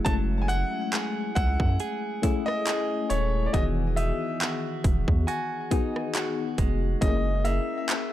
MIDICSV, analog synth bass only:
0, 0, Header, 1, 2, 480
1, 0, Start_track
1, 0, Tempo, 869565
1, 33, Time_signature, 4, 2, 24, 8
1, 4487, End_track
2, 0, Start_track
2, 0, Title_t, "Analog synth bass"
2, 0, Program_c, 0, 38
2, 34, Note_on_c, 0, 30, 116
2, 354, Note_off_c, 0, 30, 0
2, 754, Note_on_c, 0, 37, 89
2, 866, Note_off_c, 0, 37, 0
2, 883, Note_on_c, 0, 42, 97
2, 978, Note_off_c, 0, 42, 0
2, 1716, Note_on_c, 0, 27, 90
2, 1922, Note_off_c, 0, 27, 0
2, 1954, Note_on_c, 0, 28, 105
2, 2273, Note_off_c, 0, 28, 0
2, 2674, Note_on_c, 0, 28, 85
2, 2786, Note_off_c, 0, 28, 0
2, 2805, Note_on_c, 0, 40, 98
2, 2899, Note_off_c, 0, 40, 0
2, 3635, Note_on_c, 0, 29, 98
2, 3842, Note_off_c, 0, 29, 0
2, 3875, Note_on_c, 0, 30, 103
2, 4194, Note_off_c, 0, 30, 0
2, 4487, End_track
0, 0, End_of_file